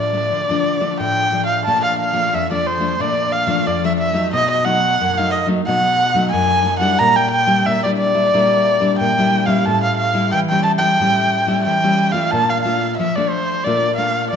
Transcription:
Already playing: A2 F3 A3 D4
0.00 D5
0.13 F3 A3 D4
0.32 D3
0.50 F3 A3 D4
0.80 F3 A3 D4
1.00 A2 G5
1.32 F3 A3 D4
1.46 F5
1.66 A#2 F3 A3 D4 A5
1.85 F5
1.99 F5
2.13 F3 A3 D4
2.33 F2 E5
2.50 F3 A3 D4 D5
2.67 C5
2.80 F3 A3 D4
2.99 A#2 F3 A3 D4 D5
3.32 F5
3.47 F3 A3 D4
3.67 F2 D5
3.84 F3 A3 D4 E5
3.99 E5
4.13 F#3 A3 D#4
4.33 B2 D#5
4.51 D#5
4.64 F#3 A3 D#4 F#5
5.00 F#2
5.18 F#3 A3 D#4 F5
5.31 D#5
5.47 F#3 A3 D#4
5.66 B2 F#3 A3 D#4 F#5
6.14 F#3 A3 D#4
6.31 F#2 G#5
6.65 F#3 A3 D#4
6.80 G3 D4 E4 F#5
6.98 A#2 A#5
7.16 G5
7.31 G5
7.47 G3 D4 E4
7.65 A#2 E5
7.83 G3 D4 E4 D5
7.97 D5
8.14 G3 D4 E4
8.33 A#2 G3 D4 E4
8.81 G3 D4 E4
8.99 A#2 G5
9.18 G3 D4 E4
9.46 G3 C#4 E4 F5
9.65 A2 A5
9.83 F5
9.97 F5
10.14 G3 C#4 E4
10.32 E3 G5
10.50 G3 C#4 E4 G5
10.63 A5
10.78 G3 C#4 E4 G5
11.00 A2 G3 C#4 E4
11.47 G3 C#4 E4
11.64 E3 G5
11.84 G3 C#4 E4
12.12 A3 D4 F4 F5
12.31 A#2 A5
12.49 F5
12.62 A3 D4 F4 F5
12.97 F3 E5
13.15 A3 D4 F4 D5
13.29 C5
13.64 A#2 A3 D4 F4 D5
13.96 A3 D4 F4 F5
14.31 F3 D5

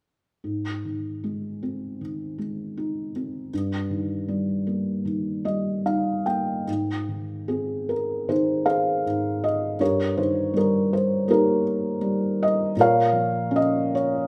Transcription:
0.44 G#2
0.85 D#3
1.24 G#3
1.63 C4
2.01 D#3
2.38 G#3
2.77 D#4
3.16 C4
3.54 G2
3.91 D#3
4.28 G3
4.67 A#3
5.05 D#3
5.45 G3 D#5
5.86 D#4 F5
6.26 A#3 G5
6.67 G#2
7.09 D#3
7.48 C4 G#4
7.89 A#4
8.29 D#3 D#4 G#4 C5
8.66 G#4 C5 F5
9.06 G#2
9.44 D#5
9.80 G2 G4 A#4 C#5
10.17 D#3 C5
10.54 G3 A#4
10.93 C5
11.28 A#3 D#4 G4 A#4
12.01 G3
12.43 D#5
12.77 A#2 A#4 C#5
12.81 F5
13.13 F3
13.51 C#4
13.56 D#5
13.95 C#5

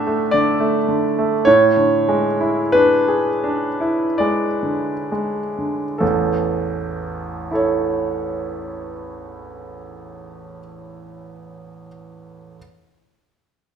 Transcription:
Already playing: A2 D3 A3 D4 A4 E5 F#5
0.07 A3
0.31 D3 D5
0.60 A3
0.89 D3
1.19 A3
1.45 A2 C#5
1.77 D3
2.08 G#3
2.40 E4
2.72 D4 B4
3.08 G#4
3.44 D4
3.81 E4
4.18 G#3 D5
4.63 D3
5.12 G#3
5.59 D3
5.98 A1 E2 A4
7.51 E4 A4
7.55 C#5

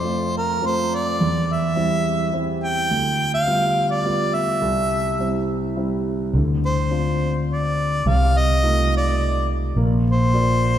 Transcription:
Already playing: F2 C5
0.04 A3 C4 F4
0.38 A#4
0.61 A3 C4 F4
0.66 C5
0.95 D5
1.20 E2
1.53 E5
1.76 G3 C4 E4
2.33 G3 C4 E4
2.64 G5
2.91 D2
3.34 F5
3.47 G3 B3 F4
3.91 D5
4.05 G3 B3 F4
4.35 E5
4.61 C2
5.19 G3 C4 E4
5.76 G3 C4 E4
6.33 D2 D3
6.65 C5
6.91 C4 D4 F4
7.53 D5
8.06 C2 C3 F5
8.38 D#5
8.63 A3 D#4 F4
8.97 D5
9.76 A#1 A#3
10.10 C5
10.33 F4 A#4 D5

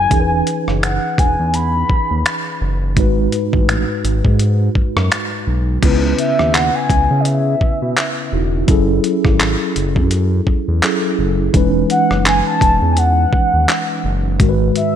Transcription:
Already playing: G#5
0.09 E1 E3 C#4 D#4 G#4, kick, closed hi-hat
0.14 A#4
0.20 B4
0.47 closed hi-hat
0.68 F#1, cross-stick
0.83 F#5, finger snap, closed hi-hat
1.18 E1 G#5, kick, closed hi-hat
1.40 E2
1.54 B5, closed hi-hat
1.90 D#2, kick
2.11 D#2
2.26 finger snap, closed hi-hat
2.61 F#1
2.96 G#1 G#2 G#3 D#4 F#4, kick, closed hi-hat
3.00 B4
3.32 closed hi-hat
3.53 A1, kick
3.69 finger snap, closed hi-hat
4.04 G#1, closed hi-hat
4.25 G#2, kick
4.39 closed hi-hat
4.75 F#2, kick
4.96 F#2, cross-stick
5.12 finger snap, closed hi-hat
5.47 B1
5.81 C#2 C#3 B3 C#4 E4, kick, closed hi-hat, crash
5.85 B4
6.18 E5, closed hi-hat
6.39 D#2, cross-stick
6.54 F#5, clap, closed hi-hat
6.75 G#5
6.90 C#2, kick, closed hi-hat
7.11 C#3
7.20 D#5
7.25 E5, closed hi-hat
7.61 B2, kick
7.82 B2
7.97 clap, closed hi-hat
8.32 E1 C#3 C#4 D#4 E4 F#4
8.67 F#1 F#3 C#4 E4 G#4, kick, closed hi-hat
8.71 A4
9.04 closed hi-hat
9.25 G#1, kick, cross-stick
9.40 clap, closed hi-hat
9.76 F#1, closed hi-hat
9.96 F#2, kick
10.11 closed hi-hat
10.47 E2, kick
10.68 E2
10.82 F#3 C#4 E4 G#4 A4, clap, closed hi-hat
11.19 F#1
11.53 E1 E3 G#3 C#4 D#4, kick, closed hi-hat
11.57 B4
11.90 F#5, closed hi-hat
12.11 F#1, cross-stick
12.26 G#5, clap, closed hi-hat
12.47 A5
12.61 E1, kick, closed hi-hat
12.82 E2
12.92 G#5
12.97 F#5, closed hi-hat
13.33 D#2, kick
13.54 D#2
13.69 clap, closed hi-hat
14.04 F#1
14.39 G#1 G#2 D#3 G#3 F#4, kick, closed hi-hat
14.43 A#4
14.49 B4
14.76 E5, closed hi-hat

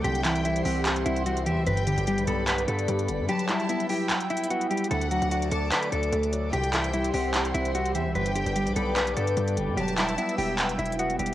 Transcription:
0.04 C2 C3 G4 C5 E5 G5 C6, closed hi-hat
0.15 closed hi-hat
0.25 E3 E4, clap, closed hi-hat
0.36 closed hi-hat
0.45 G3 E4, closed hi-hat
0.56 closed hi-hat
0.65 C2 C4 G4 F#5, open hi-hat
0.85 clap, closed hi-hat
0.96 closed hi-hat
1.06 C2 C4 E4, closed hi-hat
1.16 closed hi-hat
1.26 G3 F#4, closed hi-hat
1.37 closed hi-hat
1.46 E2 E3 G4 E5, closed hi-hat
1.57 C2
1.67 G1 G2 G4 B4 D5 G5 B5, closed hi-hat
1.77 closed hi-hat
1.87 D3 G4, closed hi-hat
1.98 G1, closed hi-hat
2.07 G3 G4, closed hi-hat
2.18 B1, closed hi-hat
2.27 B1 B3 A4 B5, closed hi-hat
2.47 B4, clap, closed hi-hat
2.58 closed hi-hat
2.68 G2 B3 A4, closed hi-hat
2.79 closed hi-hat
2.88 G2 G3, closed hi-hat
2.99 closed hi-hat
3.08 F#1 D3, closed hi-hat
3.19 G2
3.29 F#3 G4 E5 G5 A5, closed hi-hat
3.39 closed hi-hat
3.49 G3 E4, clap, closed hi-hat
3.60 closed hi-hat
3.69 B3 E4, closed hi-hat
3.80 closed hi-hat
3.89 E4 G4 G5, open hi-hat
4.10 clap, closed hi-hat
4.21 closed hi-hat
4.30 E4, closed hi-hat
4.37 closed hi-hat
4.44 closed hi-hat
4.50 B3 F#4, closed hi-hat
4.61 closed hi-hat
4.71 G3 G4, closed hi-hat
4.77 closed hi-hat
4.84 closed hi-hat
4.91 D2 D3 A4 D5 F#5 D6, closed hi-hat
5.01 closed hi-hat
5.11 F#3 F#4, closed hi-hat
5.22 D2, closed hi-hat
5.31 A3 F#4, closed hi-hat
5.42 closed hi-hat
5.52 D2 D4 A4 A5, closed hi-hat
5.72 B4, clap, closed hi-hat
5.83 closed hi-hat
5.92 D2 D4 A4, closed hi-hat
6.03 closed hi-hat
6.12 D2 A3, closed hi-hat
6.23 closed hi-hat
6.33 F#3, closed hi-hat
6.53 C2 C3 G4 C5 E5 G5 C6, closed hi-hat
6.64 closed hi-hat
6.73 E3 E4, clap, closed hi-hat
6.84 closed hi-hat
6.93 G3 E4, closed hi-hat
7.04 closed hi-hat
7.14 C2 C4 G4 F#5, open hi-hat
7.34 clap, closed hi-hat
7.45 closed hi-hat
7.54 C2 C4 E4, closed hi-hat
7.65 closed hi-hat
7.75 G3 F#4, closed hi-hat
7.85 closed hi-hat
7.95 E2 E3 G4 E5, closed hi-hat
8.06 C2
8.15 G1 G2 B4 D5 G5 D6, closed hi-hat
8.26 closed hi-hat
8.35 D3 G4, closed hi-hat
8.46 G1, closed hi-hat
8.56 G3 G4, closed hi-hat
8.67 B1, closed hi-hat
8.76 B1 B3 A4 B5, closed hi-hat
8.96 B4, clap, closed hi-hat
9.07 closed hi-hat
9.17 G2 B3 A4, closed hi-hat
9.27 closed hi-hat
9.37 G2 G3, closed hi-hat
9.48 closed hi-hat
9.57 F#1 D3, closed hi-hat
9.68 G2
9.77 E1 F#3 G4 E5 A5 E6, closed hi-hat
9.88 closed hi-hat
9.98 G3 E4, clap, closed hi-hat
10.09 closed hi-hat
10.18 B3 E4, closed hi-hat
10.29 closed hi-hat
10.38 E1 E4 G4 G5, open hi-hat
10.58 clap, closed hi-hat
10.69 closed hi-hat
10.79 E1 E4, closed hi-hat
10.86 closed hi-hat
10.92 closed hi-hat
10.99 B3 F#4, closed hi-hat
11.10 closed hi-hat
11.19 E1 G3 G4, closed hi-hat
11.26 closed hi-hat

